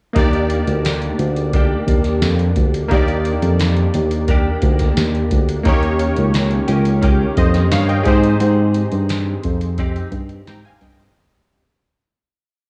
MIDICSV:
0, 0, Header, 1, 5, 480
1, 0, Start_track
1, 0, Key_signature, -3, "major"
1, 0, Tempo, 688073
1, 108, Time_signature, 4, 2, 24, 8
1, 8853, End_track
2, 0, Start_track
2, 0, Title_t, "Synth keys"
2, 0, Program_c, 0, 88
2, 92, Note_on_c, 0, 58, 64
2, 103, Note_on_c, 0, 63, 61
2, 116, Note_on_c, 0, 67, 63
2, 128, Note_on_c, 0, 74, 80
2, 242, Control_c, 0, 64, 127
2, 1992, Note_off_c, 0, 58, 0
2, 1997, Note_off_c, 0, 63, 0
2, 2004, Note_off_c, 0, 67, 0
2, 2010, Note_off_c, 0, 74, 0
2, 2011, Note_on_c, 0, 58, 73
2, 2022, Note_on_c, 0, 63, 65
2, 2034, Note_on_c, 0, 67, 60
2, 2046, Note_on_c, 0, 74, 75
2, 3910, Note_off_c, 0, 58, 0
2, 3915, Note_off_c, 0, 63, 0
2, 3921, Note_off_c, 0, 67, 0
2, 3928, Note_off_c, 0, 74, 0
2, 3929, Note_on_c, 0, 58, 69
2, 3942, Note_on_c, 0, 63, 64
2, 3953, Note_on_c, 0, 67, 63
2, 3954, Control_c, 0, 64, 0
2, 3964, Note_on_c, 0, 73, 83
2, 4093, Control_c, 0, 64, 127
2, 5131, Note_off_c, 0, 73, 0
2, 5144, Note_on_c, 0, 75, 59
2, 5149, Note_on_c, 0, 72, 53
2, 5373, Note_off_c, 0, 75, 0
2, 5375, Note_off_c, 0, 72, 0
2, 5385, Note_on_c, 0, 77, 69
2, 5387, Note_on_c, 0, 73, 54
2, 5499, Note_off_c, 0, 77, 0
2, 5500, Note_off_c, 0, 73, 0
2, 5501, Note_on_c, 0, 79, 54
2, 5506, Note_on_c, 0, 75, 45
2, 5589, Note_off_c, 0, 58, 0
2, 5595, Note_off_c, 0, 63, 0
2, 5601, Note_off_c, 0, 67, 0
2, 5604, Note_on_c, 0, 68, 65
2, 5615, Note_on_c, 0, 63, 62
2, 5629, Note_on_c, 0, 67, 58
2, 5634, Control_c, 0, 64, 0
2, 5636, Note_on_c, 0, 72, 81
2, 5731, Note_off_c, 0, 79, 0
2, 5734, Note_off_c, 0, 75, 0
2, 5745, Control_c, 0, 64, 127
2, 7283, Note_off_c, 0, 72, 0
2, 7308, Note_on_c, 0, 82, 56
2, 7310, Note_on_c, 0, 79, 53
2, 7421, Note_off_c, 0, 82, 0
2, 7422, Note_off_c, 0, 79, 0
2, 7429, Note_on_c, 0, 80, 62
2, 7436, Note_on_c, 0, 77, 53
2, 7507, Note_off_c, 0, 68, 0
2, 7513, Note_off_c, 0, 63, 0
2, 7520, Note_off_c, 0, 67, 0
2, 7542, Note_off_c, 0, 80, 0
2, 7545, Note_off_c, 0, 77, 0
2, 7549, Note_on_c, 0, 79, 66
2, 7551, Note_on_c, 0, 75, 51
2, 7659, Note_off_c, 0, 75, 0
2, 7661, Note_off_c, 0, 79, 0
2, 7668, Note_on_c, 0, 75, 50
2, 7670, Note_on_c, 0, 72, 47
2, 7795, Control_c, 0, 64, 0
2, 7895, Note_off_c, 0, 75, 0
2, 7896, Note_off_c, 0, 72, 0
2, 8853, End_track
3, 0, Start_track
3, 0, Title_t, "Clean electric guitar"
3, 0, Program_c, 1, 27
3, 111, Note_on_c, 1, 58, 81
3, 121, Note_on_c, 1, 62, 87
3, 130, Note_on_c, 1, 67, 90
3, 1069, Note_off_c, 1, 58, 0
3, 1072, Note_off_c, 1, 62, 0
3, 1072, Note_on_c, 1, 58, 77
3, 1081, Note_on_c, 1, 62, 73
3, 1087, Note_off_c, 1, 67, 0
3, 1090, Note_on_c, 1, 67, 82
3, 2017, Note_on_c, 1, 51, 80
3, 2028, Note_off_c, 1, 58, 0
3, 2031, Note_on_c, 1, 58, 76
3, 2032, Note_off_c, 1, 62, 0
3, 2040, Note_on_c, 1, 62, 87
3, 2046, Note_off_c, 1, 67, 0
3, 2049, Note_on_c, 1, 67, 84
3, 2985, Note_off_c, 1, 58, 0
3, 2987, Note_on_c, 1, 58, 77
3, 2990, Note_off_c, 1, 62, 0
3, 2998, Note_on_c, 1, 62, 77
3, 3002, Note_off_c, 1, 67, 0
3, 3004, Note_on_c, 1, 67, 82
3, 3019, Note_off_c, 1, 51, 0
3, 3942, Note_on_c, 1, 51, 90
3, 3948, Note_off_c, 1, 58, 0
3, 3950, Note_off_c, 1, 62, 0
3, 3951, Note_on_c, 1, 58, 76
3, 3953, Note_on_c, 1, 61, 92
3, 3957, Note_off_c, 1, 67, 0
3, 3959, Note_on_c, 1, 67, 85
3, 4655, Note_off_c, 1, 67, 0
3, 4658, Note_on_c, 1, 67, 48
3, 4660, Note_off_c, 1, 61, 0
3, 4668, Note_off_c, 1, 58, 0
3, 4668, Note_on_c, 1, 61, 43
3, 4676, Note_on_c, 1, 58, 37
3, 4689, Note_off_c, 1, 51, 0
3, 4893, Note_off_c, 1, 58, 0
3, 4894, Note_on_c, 1, 51, 79
3, 4895, Note_off_c, 1, 61, 0
3, 4901, Note_off_c, 1, 67, 0
3, 4901, Note_on_c, 1, 58, 69
3, 4903, Note_on_c, 1, 61, 78
3, 4909, Note_on_c, 1, 67, 85
3, 5608, Note_off_c, 1, 67, 0
3, 5611, Note_on_c, 1, 67, 60
3, 5622, Note_off_c, 1, 61, 0
3, 5623, Note_off_c, 1, 58, 0
3, 5625, Note_on_c, 1, 63, 57
3, 5633, Note_on_c, 1, 60, 60
3, 6825, Note_off_c, 1, 60, 0
3, 6828, Note_on_c, 1, 60, 73
3, 6829, Note_off_c, 1, 63, 0
3, 6832, Note_on_c, 1, 63, 81
3, 6834, Note_off_c, 1, 67, 0
3, 6836, Note_on_c, 1, 67, 85
3, 7302, Note_off_c, 1, 60, 0
3, 7305, Note_on_c, 1, 60, 59
3, 7309, Note_off_c, 1, 63, 0
3, 7312, Note_on_c, 1, 63, 60
3, 7313, Note_off_c, 1, 67, 0
3, 7316, Note_on_c, 1, 67, 61
3, 7336, Note_off_c, 1, 51, 0
3, 8140, Note_off_c, 1, 60, 0
3, 8140, Note_off_c, 1, 63, 0
3, 8140, Note_off_c, 1, 67, 0
3, 8853, End_track
4, 0, Start_track
4, 0, Title_t, "Tine electric piano"
4, 0, Program_c, 2, 4
4, 110, Note_on_c, 2, 39, 82
4, 397, Note_off_c, 2, 39, 0
4, 468, Note_on_c, 2, 38, 74
4, 756, Note_off_c, 2, 38, 0
4, 827, Note_on_c, 2, 38, 81
4, 1211, Note_off_c, 2, 38, 0
4, 1308, Note_on_c, 2, 39, 78
4, 1546, Note_on_c, 2, 41, 85
4, 1548, Note_off_c, 2, 39, 0
4, 1739, Note_off_c, 2, 41, 0
4, 1789, Note_on_c, 2, 38, 79
4, 1980, Note_off_c, 2, 38, 0
4, 2029, Note_on_c, 2, 39, 95
4, 2316, Note_off_c, 2, 39, 0
4, 2390, Note_on_c, 2, 41, 78
4, 2677, Note_off_c, 2, 41, 0
4, 2749, Note_on_c, 2, 39, 84
4, 3132, Note_off_c, 2, 39, 0
4, 3225, Note_on_c, 2, 38, 85
4, 3417, Note_off_c, 2, 38, 0
4, 3469, Note_on_c, 2, 39, 80
4, 3660, Note_off_c, 2, 39, 0
4, 3707, Note_on_c, 2, 38, 78
4, 3899, Note_off_c, 2, 38, 0
4, 3944, Note_on_c, 2, 39, 86
4, 4233, Note_off_c, 2, 39, 0
4, 4309, Note_on_c, 2, 37, 76
4, 4596, Note_off_c, 2, 37, 0
4, 4666, Note_on_c, 2, 37, 79
4, 5050, Note_off_c, 2, 37, 0
4, 5141, Note_on_c, 2, 41, 84
4, 5335, Note_off_c, 2, 41, 0
4, 5383, Note_on_c, 2, 43, 72
4, 5576, Note_off_c, 2, 43, 0
4, 5622, Note_on_c, 2, 44, 85
4, 5815, Note_off_c, 2, 44, 0
4, 5863, Note_on_c, 2, 44, 78
4, 6152, Note_off_c, 2, 44, 0
4, 6224, Note_on_c, 2, 43, 78
4, 6513, Note_off_c, 2, 43, 0
4, 6586, Note_on_c, 2, 41, 80
4, 6970, Note_off_c, 2, 41, 0
4, 7061, Note_on_c, 2, 43, 82
4, 7255, Note_off_c, 2, 43, 0
4, 7302, Note_on_c, 2, 44, 77
4, 7399, Note_off_c, 2, 44, 0
4, 7544, Note_on_c, 2, 43, 82
4, 7737, Note_off_c, 2, 43, 0
4, 8853, End_track
5, 0, Start_track
5, 0, Title_t, "Drums"
5, 109, Note_on_c, 9, 42, 66
5, 110, Note_on_c, 9, 36, 99
5, 179, Note_off_c, 9, 36, 0
5, 179, Note_off_c, 9, 42, 0
5, 231, Note_on_c, 9, 42, 32
5, 301, Note_off_c, 9, 42, 0
5, 348, Note_on_c, 9, 42, 55
5, 418, Note_off_c, 9, 42, 0
5, 471, Note_on_c, 9, 42, 47
5, 541, Note_off_c, 9, 42, 0
5, 592, Note_on_c, 9, 42, 80
5, 599, Note_on_c, 9, 38, 102
5, 662, Note_off_c, 9, 42, 0
5, 669, Note_off_c, 9, 38, 0
5, 710, Note_on_c, 9, 42, 30
5, 779, Note_off_c, 9, 42, 0
5, 831, Note_on_c, 9, 42, 72
5, 901, Note_off_c, 9, 42, 0
5, 952, Note_on_c, 9, 42, 48
5, 1021, Note_off_c, 9, 42, 0
5, 1069, Note_on_c, 9, 36, 87
5, 1070, Note_on_c, 9, 42, 81
5, 1138, Note_off_c, 9, 36, 0
5, 1139, Note_off_c, 9, 42, 0
5, 1308, Note_on_c, 9, 36, 82
5, 1311, Note_on_c, 9, 42, 73
5, 1378, Note_off_c, 9, 36, 0
5, 1380, Note_off_c, 9, 42, 0
5, 1425, Note_on_c, 9, 42, 46
5, 1429, Note_on_c, 9, 38, 28
5, 1495, Note_off_c, 9, 42, 0
5, 1499, Note_off_c, 9, 38, 0
5, 1549, Note_on_c, 9, 38, 92
5, 1549, Note_on_c, 9, 42, 82
5, 1619, Note_off_c, 9, 38, 0
5, 1619, Note_off_c, 9, 42, 0
5, 1669, Note_on_c, 9, 42, 31
5, 1738, Note_off_c, 9, 42, 0
5, 1785, Note_on_c, 9, 42, 63
5, 1788, Note_on_c, 9, 36, 85
5, 1855, Note_off_c, 9, 42, 0
5, 1858, Note_off_c, 9, 36, 0
5, 1912, Note_on_c, 9, 42, 48
5, 1982, Note_off_c, 9, 42, 0
5, 2029, Note_on_c, 9, 36, 95
5, 2031, Note_on_c, 9, 42, 64
5, 2099, Note_off_c, 9, 36, 0
5, 2100, Note_off_c, 9, 42, 0
5, 2149, Note_on_c, 9, 42, 33
5, 2219, Note_off_c, 9, 42, 0
5, 2268, Note_on_c, 9, 42, 59
5, 2338, Note_off_c, 9, 42, 0
5, 2388, Note_on_c, 9, 42, 49
5, 2458, Note_off_c, 9, 42, 0
5, 2508, Note_on_c, 9, 42, 78
5, 2515, Note_on_c, 9, 38, 98
5, 2578, Note_off_c, 9, 42, 0
5, 2585, Note_off_c, 9, 38, 0
5, 2627, Note_on_c, 9, 42, 31
5, 2697, Note_off_c, 9, 42, 0
5, 2747, Note_on_c, 9, 42, 75
5, 2817, Note_off_c, 9, 42, 0
5, 2867, Note_on_c, 9, 42, 48
5, 2937, Note_off_c, 9, 42, 0
5, 2985, Note_on_c, 9, 36, 88
5, 2985, Note_on_c, 9, 42, 80
5, 3055, Note_off_c, 9, 36, 0
5, 3055, Note_off_c, 9, 42, 0
5, 3222, Note_on_c, 9, 42, 70
5, 3224, Note_on_c, 9, 36, 82
5, 3291, Note_off_c, 9, 42, 0
5, 3294, Note_off_c, 9, 36, 0
5, 3343, Note_on_c, 9, 42, 46
5, 3347, Note_on_c, 9, 38, 29
5, 3351, Note_on_c, 9, 36, 67
5, 3412, Note_off_c, 9, 42, 0
5, 3416, Note_off_c, 9, 38, 0
5, 3421, Note_off_c, 9, 36, 0
5, 3467, Note_on_c, 9, 38, 89
5, 3467, Note_on_c, 9, 42, 88
5, 3537, Note_off_c, 9, 38, 0
5, 3537, Note_off_c, 9, 42, 0
5, 3591, Note_on_c, 9, 42, 33
5, 3661, Note_off_c, 9, 42, 0
5, 3705, Note_on_c, 9, 42, 63
5, 3706, Note_on_c, 9, 36, 85
5, 3775, Note_off_c, 9, 42, 0
5, 3776, Note_off_c, 9, 36, 0
5, 3828, Note_on_c, 9, 42, 53
5, 3897, Note_off_c, 9, 42, 0
5, 3943, Note_on_c, 9, 42, 63
5, 3944, Note_on_c, 9, 36, 95
5, 4013, Note_off_c, 9, 42, 0
5, 4014, Note_off_c, 9, 36, 0
5, 4065, Note_on_c, 9, 42, 32
5, 4135, Note_off_c, 9, 42, 0
5, 4180, Note_on_c, 9, 42, 61
5, 4250, Note_off_c, 9, 42, 0
5, 4300, Note_on_c, 9, 42, 44
5, 4370, Note_off_c, 9, 42, 0
5, 4423, Note_on_c, 9, 42, 75
5, 4430, Note_on_c, 9, 38, 92
5, 4493, Note_off_c, 9, 42, 0
5, 4500, Note_off_c, 9, 38, 0
5, 4539, Note_on_c, 9, 42, 29
5, 4608, Note_off_c, 9, 42, 0
5, 4660, Note_on_c, 9, 42, 77
5, 4729, Note_off_c, 9, 42, 0
5, 4780, Note_on_c, 9, 42, 45
5, 4850, Note_off_c, 9, 42, 0
5, 4901, Note_on_c, 9, 42, 80
5, 4902, Note_on_c, 9, 36, 92
5, 4970, Note_off_c, 9, 42, 0
5, 4972, Note_off_c, 9, 36, 0
5, 5140, Note_on_c, 9, 42, 69
5, 5142, Note_on_c, 9, 36, 85
5, 5210, Note_off_c, 9, 42, 0
5, 5211, Note_off_c, 9, 36, 0
5, 5260, Note_on_c, 9, 42, 45
5, 5264, Note_on_c, 9, 38, 30
5, 5330, Note_off_c, 9, 42, 0
5, 5334, Note_off_c, 9, 38, 0
5, 5382, Note_on_c, 9, 38, 97
5, 5382, Note_on_c, 9, 42, 91
5, 5452, Note_off_c, 9, 38, 0
5, 5452, Note_off_c, 9, 42, 0
5, 5505, Note_on_c, 9, 42, 30
5, 5575, Note_off_c, 9, 42, 0
5, 5618, Note_on_c, 9, 42, 67
5, 5622, Note_on_c, 9, 36, 92
5, 5688, Note_off_c, 9, 42, 0
5, 5692, Note_off_c, 9, 36, 0
5, 5745, Note_on_c, 9, 42, 51
5, 5815, Note_off_c, 9, 42, 0
5, 5861, Note_on_c, 9, 42, 63
5, 5931, Note_off_c, 9, 42, 0
5, 6100, Note_on_c, 9, 42, 60
5, 6170, Note_off_c, 9, 42, 0
5, 6220, Note_on_c, 9, 42, 46
5, 6289, Note_off_c, 9, 42, 0
5, 6343, Note_on_c, 9, 42, 80
5, 6350, Note_on_c, 9, 38, 97
5, 6413, Note_off_c, 9, 42, 0
5, 6420, Note_off_c, 9, 38, 0
5, 6582, Note_on_c, 9, 42, 79
5, 6587, Note_on_c, 9, 36, 74
5, 6652, Note_off_c, 9, 42, 0
5, 6657, Note_off_c, 9, 36, 0
5, 6705, Note_on_c, 9, 42, 47
5, 6775, Note_off_c, 9, 42, 0
5, 6822, Note_on_c, 9, 36, 95
5, 6823, Note_on_c, 9, 42, 75
5, 6892, Note_off_c, 9, 36, 0
5, 6892, Note_off_c, 9, 42, 0
5, 6948, Note_on_c, 9, 42, 33
5, 7018, Note_off_c, 9, 42, 0
5, 7060, Note_on_c, 9, 42, 69
5, 7061, Note_on_c, 9, 36, 82
5, 7129, Note_off_c, 9, 42, 0
5, 7131, Note_off_c, 9, 36, 0
5, 7180, Note_on_c, 9, 42, 43
5, 7249, Note_off_c, 9, 42, 0
5, 7307, Note_on_c, 9, 38, 99
5, 7307, Note_on_c, 9, 42, 88
5, 7376, Note_off_c, 9, 38, 0
5, 7376, Note_off_c, 9, 42, 0
5, 7429, Note_on_c, 9, 42, 29
5, 7499, Note_off_c, 9, 42, 0
5, 7542, Note_on_c, 9, 42, 63
5, 7545, Note_on_c, 9, 36, 86
5, 7612, Note_off_c, 9, 42, 0
5, 7615, Note_off_c, 9, 36, 0
5, 7670, Note_on_c, 9, 42, 48
5, 7739, Note_off_c, 9, 42, 0
5, 8853, End_track
0, 0, End_of_file